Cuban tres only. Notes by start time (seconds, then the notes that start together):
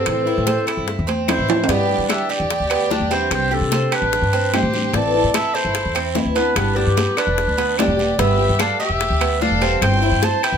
Already playing: C4
0.27 E4
0.47 C5
0.67 E4
1.07 C4
1.28 E4
1.69 B3
2.09 D4
2.29 G4
2.70 B3
2.91 D4
3.11 C4
3.51 G4
3.72 C5
3.92 G4
4.33 C4
4.54 G4
5.34 E4
5.55 A4
5.95 C4
6.15 E4
6.36 B3
6.76 D4
6.97 B4
7.17 D4
7.58 B3
7.78 D4
8.19 B3
8.60 D4
8.80 G4
9.21 B3
9.41 D4
9.61 C4
10.02 E4
10.23 C5
10.44 E4